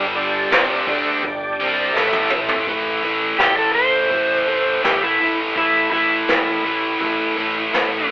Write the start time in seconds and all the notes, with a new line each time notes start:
Already playing: G1 G2 D3 G3
0.15 G3 D4 G4 D5
0.50 F1 F2 C3 F3, snare, open hi-hat
0.87 D2 D3 G3 A3 D4 G4 D5, kick
1.23 G1 G2 D3, kick, open hi-hat
1.59 C2 C3 G3 C4
1.92 A1 A2 A3 E4 A4 E5
1.96 E3 A3, snare
2.13 high tom
2.30 mid tom
2.49 floor tom
2.67 A1 A2 E3 A3, kick, open hi-hat
3.03 A1 A2 E3 A3, open hi-hat
3.39 A1 A2 E3 A3 G4, snare
3.58 A4
3.75 A1 A2 E3 A3 C5, open hi-hat
4.10 A1 A2 E3 A3, kick, open hi-hat
4.47 A1 A2 E3 A3, open hi-hat
4.83 A1 A2 E3 A3 G4, snare, open hi-hat
5.03 E4
5.20 G1 A2 E3 A3, open hi-hat
5.55 A1 A2 E3 A3 E4, kick, open hi-hat
5.92 A1 A2 E3 A3 E4, kick, open hi-hat
6.28 A1 A2 E3 A3, snare, open hi-hat
6.64 A1 A2 E3 A3, open hi-hat
7.00 A1 A2 E3 A3, kick, open hi-hat
7.37 A1 A2 E3 A3, open hi-hat
7.73 A1 A2 E3 A3, snare